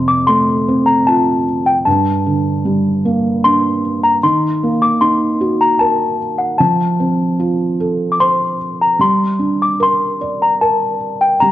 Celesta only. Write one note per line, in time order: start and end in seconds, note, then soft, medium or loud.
0.08 0.28 D6 medium
0.27 0.83 C6 medium
0.86 1.05 A#5 medium
1.07 1.68 A5 medium
1.66 1.75 G5 medium
1.86 3.48 A5 medium
3.44 3.99 C6 medium
4.04 4.12 A#5 medium
4.23 4.84 C6 medium
4.82 5.00 D6 medium
5.01 5.62 C6 medium
5.61 5.81 A#5 medium
5.79 6.35 A5 medium
6.38 6.59 F#5 medium
6.58 8.16 A5 medium
8.12 8.19 D6 medium
8.20 8.76 C6 medium
8.82 9.02 A#5 medium
9.01 9.63 C6 medium
9.62 9.82 D6 medium
9.83 10.43 C6 medium
10.42 10.51 A#5 medium
10.61 11.17 A5 medium
11.21 11.41 G5 medium
11.40 11.52 A#5 medium